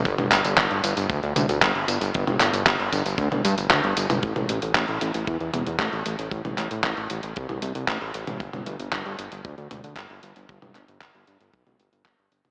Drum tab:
HH |xxxxxxxxxxxxxxxx|xxxxxxxxxxxxxxxx|xxxxxxxxxxxxxxxx|xxxxxxxxxxxxxxxx|
TB |x-xxx-xxx-xx--xx|x-xx--xxx-xxx-xx|----------------|----------------|
CP |--x-x-------x---|--x-x-------x---|----x-------x---|--x-x-------x---|
T1 |-o--------o-----|-o-------o-----o|-o--------o-----|-o-------o-----o|
BD |o---o---o---o---|o---o-o-o---o---|o---o---o---o---|o---o---o---o---|

HH |xxxxxxxxxxxxxxxx|xxxx-xxxxxxxxxxx|
TB |----------------|----------------|
CP |----x-------x---|--x-x-------x---|
T1 |-o--------o-----|-o-------o-----o|
BD |o---o---o---o---|o---o---o---o---|